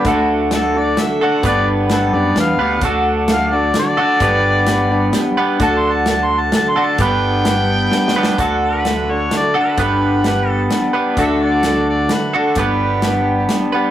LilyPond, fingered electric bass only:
\new Staff \with { instrumentName = "Fingered electric bass" } { \clef bass \time 3/4 \key d \major \tempo 4 = 129 d,2 r4 | g,,4. fis,8 e,8 d,8 | d,2 r4 | g,,2 r4 |
d,2 r4 | g,,2 r4 | d,2 r4 | g,,2 r4 |
d,2 r4 | g,,2 r4 | }